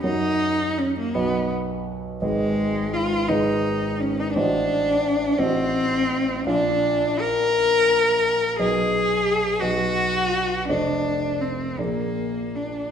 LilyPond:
<<
  \new Staff \with { instrumentName = "Grand piano" } { \time 6/8 \key bes \phrygian \tempo 4. = 56 <ges, ges' bes' des''>4. <b,, fis' b' dis''>4. | <aes,, aes' ces'' ees''>4. <aes,, aes' ces'' ees''>4. | <a,, fis' c'' ees''>4. <a,, fis' c'' ees''>4. | <bes,, f' d'' f''>2. |
<b,, b' dis''>4. <b,, b' dis''>4. | <f,, a' c'' ees''>4. <bes,, aes' bes' d''>4. | }
  \new Staff \with { instrumentName = "Cello" } { \time 6/8 \key bes \phrygian ees'4 des'16 bes16 b8 r4 | aes4 f'8 ees'4 des'16 ees'16 | d'4. c'4. | d'4 bes'2 |
aes'4. fis'4. | d'4 c'8 bes4 d'8 | }
>>